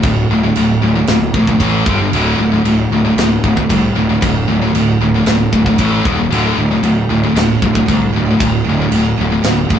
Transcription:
0.03 0.24 D1 loud
0.03 0.27 D2 medium
0.03 0.27 A2 medium
0.03 kick loud
0.03 china medium
0.29 0.50 D1 loud
0.29 0.43 D2 medium
0.29 0.42 A2 medium
0.44 0.56 D2 medium
0.44 0.56 A2 medium
0.56 0.77 D1 medium
0.56 0.80 D2 medium
0.56 0.81 A2 medium
0.56 china medium
0.82 1.02 D1 loud
0.82 0.94 D2 medium
0.82 0.94 A2 medium
0.95 1.07 D2 medium
0.95 1.08 A2 medium
1.07 1.29 D1 medium
1.07 1.32 D2 medium
1.07 1.32 A2 medium
1.07 snare loud
1.07 china medium
1.34 1.54 A#1 medium
1.34 1.47 D2 medium
1.34 1.47 A2 medium
1.34 kick medium
1.47 1.59 D2 medium
1.47 1.59 A2 medium
1.47 kick medium
1.60 1.81 A1 medium
1.60 1.85 A2 loud
1.60 1.85 E3 loud
1.60 1.86 A3 loud
1.60 kick medium
1.60 china medium
1.86 2.07 G1 medium
1.86 1.98 G2 medium
1.86 1.99 D3 loud
1.86 1.99 G3 loud
1.86 kick loud
2.01 2.13 G2 medium
2.01 2.14 D3 medium
2.13 2.33 D1 loud
2.13 2.38 D2 medium
2.13 2.38 A2 loud
2.13 2.39 D3 loud
2.13 china medium
2.38 2.59 D1 medium
2.38 2.52 D2 medium
2.38 2.51 A2 medium
2.52 2.64 D2 medium
2.52 2.65 A2 medium
2.64 2.85 D1 medium
2.64 2.89 D2 medium
2.64 2.89 A2 medium
2.64 china medium
2.90 3.11 D1 medium
2.90 3.04 D2 medium
2.90 3.03 A2 medium
3.05 3.17 D2 medium
3.05 3.18 A2 medium
3.16 3.37 D1 loud
3.16 3.42 D2 medium
3.16 3.42 A2 medium
3.16 snare loud
3.16 china medium
3.44 3.64 D1 medium
3.44 3.56 D2 medium
3.44 3.55 A2 medium
3.44 kick medium
3.57 3.68 D2 medium
3.57 3.69 A2 medium
3.57 kick medium
3.69 3.90 C2 medium
3.69 3.93 D2 medium
3.69 3.94 A2 medium
3.69 kick medium
3.69 china medium
3.95 4.16 D1 medium
3.95 4.09 D2 medium
3.95 4.08 A2 medium
4.09 4.21 D2 medium
4.09 4.21 A2 medium
4.22 4.43 D1 medium
4.22 4.46 D2 medium
4.22 4.46 A2 medium
4.22 kick loud
4.22 china medium
4.48 4.68 D1 medium
4.48 4.61 D2 medium
4.48 4.61 A2 medium
4.62 4.74 D2 medium
4.62 4.74 A2 medium
4.74 4.94 D1 medium
4.74 4.98 D2 medium
4.74 4.99 A2 medium
4.74 china medium
5.00 5.21 D1 medium
5.00 5.14 D2 medium
5.00 5.14 A2 medium
5.16 5.26 D2 medium
5.16 5.26 A2 medium
5.26 5.47 D1 medium
5.26 5.51 D2 medium
5.26 5.51 A2 medium
5.26 snare loud
5.26 china medium
5.53 5.73 D1 medium
5.53 5.66 D2 medium
5.53 5.65 A2 medium
5.53 kick medium
5.66 5.79 D2 medium
5.66 5.78 A2 medium
5.66 kick medium
5.78 5.99 A1 medium
5.78 6.04 A2 medium
5.78 6.04 E3 loud
5.78 6.05 A3 loud
5.78 kick medium
5.78 china medium
6.04 6.25 D#1 medium
6.04 6.16 D#2 medium
6.04 6.17 A#2 medium
6.04 6.18 D#3 loud
6.04 kick loud
6.18 6.30 D#2 medium
6.18 6.30 A#2 medium
6.30 6.51 D1 medium
6.30 6.56 D2 medium
6.30 6.56 A2 medium
6.30 6.56 D3 loud
6.30 china medium
6.56 6.77 D1 medium
6.56 6.70 D2 medium
6.56 6.70 A2 medium
6.71 6.82 D2 medium
6.71 6.82 A2 medium
6.82 7.03 D1 medium
6.82 7.07 D2 medium
6.82 7.07 A2 medium
6.82 china soft
7.07 7.29 D1 medium
7.07 7.23 D2 medium
7.07 7.22 A2 medium
7.24 7.34 D2 medium
7.24 7.34 A2 medium
7.34 7.55 D1 medium
7.34 7.60 D2 medium
7.34 7.60 A2 medium
7.34 snare loud
7.34 china medium
7.62 7.82 D1 medium
7.62 7.75 D2 medium
7.62 7.75 A2 medium
7.62 kick medium
7.75 7.88 D2 medium
7.75 7.89 A2 medium
7.75 kick medium
7.88 8.09 C2 medium
7.88 8.13 D2 medium
7.88 8.13 A2 medium
7.88 kick medium
7.88 china medium
8.13 8.34 D1 medium
8.13 8.29 D2 medium
8.13 8.29 A2 medium
8.25 8.38 D2 medium
8.25 8.38 A2 medium
8.31 8.40 D2 medium
8.31 8.41 A2 medium
8.40 8.61 D1 loud
8.40 8.65 D2 medium
8.40 8.65 A2 medium
8.40 kick loud
8.40 china medium
8.64 8.86 D1 medium
8.64 8.77 D2 medium
8.64 8.76 A2 medium
8.69 8.81 D2 medium
8.69 8.80 A2 medium
8.77 8.90 A2 medium
8.81 8.94 D2 medium
8.81 8.94 A2 medium
8.91 9.12 D1 medium
8.91 9.15 D2 medium
8.91 9.16 A2 medium
8.91 china medium
8.95 9.18 D2 medium
8.95 9.18 A2 medium
9.18 9.39 D1 loud
9.18 9.32 D2 medium
9.18 9.31 A2 medium
9.32 9.46 D2 medium
9.32 9.45 A2 medium
9.42 9.65 D1 loud
9.42 9.67 D2 medium
9.42 snare loud
9.42 china medium
9.47 9.70 D2 medium
9.47 9.70 A2 medium
9.69 9.79 G1 medium
9.69 9.79 D2 medium
9.69 9.79 A2 medium
9.69 kick medium
9.74 9.79 D2 medium
9.74 9.79 A2 medium

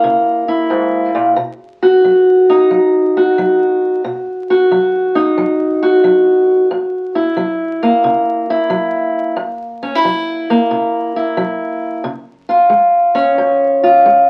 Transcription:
0.00 0.66 C#3 medium
0.00 1.37 A#3 medium
0.00 0.47 E4 medium
0.48 1.34 E4 medium
0.70 1.14 G#2 medium
1.15 1.36 A#2 medium
1.36 1.99 B2 medium
1.82 3.16 F#4 medium
2.04 2.66 F#3 medium
2.50 4.02 D#4 medium
2.71 3.33 F#3 medium
3.17 4.50 F#4 medium
3.38 4.00 F#3 medium
4.04 4.66 B2 medium
4.50 5.82 F#4 medium
4.71 5.33 F#3 medium
5.15 6.68 D#4 medium
5.38 6.00 F#3 medium
5.83 7.15 F#4 medium
6.04 6.66 F#3 medium
6.71 7.33 F#2 medium
7.15 8.49 E4 medium
7.37 7.99 F#3 medium
7.83 10.49 A#3 medium
8.04 8.66 C#3 medium
8.50 9.36 E4 medium
8.70 9.33 F#3 medium
9.36 9.99 F#2 medium
9.83 9.95 C#4 medium
9.95 11.15 E4 soft
10.05 10.67 F#3 medium
10.50 12.05 A#3 medium
10.71 11.33 C#3 medium
11.16 12.02 E4 medium
11.37 12.00 F#3 medium
12.04 12.66 C#3 medium
12.49 13.82 F4 medium
12.70 13.33 G#3 medium
13.15 14.30 C#4 medium
13.38 14.00 G#2 medium
13.83 14.30 F4 medium
14.06 14.30 G#3 medium

